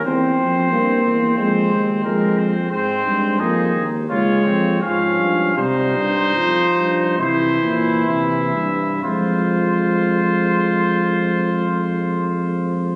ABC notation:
X:1
M:4/4
L:1/8
Q:1/4=78
K:Fm
V:1 name="Trumpet"
c4 c2 B c | c2 A z d2 f2 | c4 c2 =e2 | c8 |]
V:2 name="Flugelhorn"
C8 | C2 E z F C D2 | E4 =E4 | F8 |]
V:3 name="Euphonium" clef=bass
C2 B,2 A,2 A,2 | A,2 B, z A,2 F,2 | G,2 F,2 =E,4 | A,8 |]
V:4 name="Tuba" clef=bass
=E,, F,, G,, E,, F,, _E,, F,,2 | A,, G,, F,, E,, D,, F,, A,, G,, | C, G,, F,, G,, C, B,, C, G,, | F,,8 |]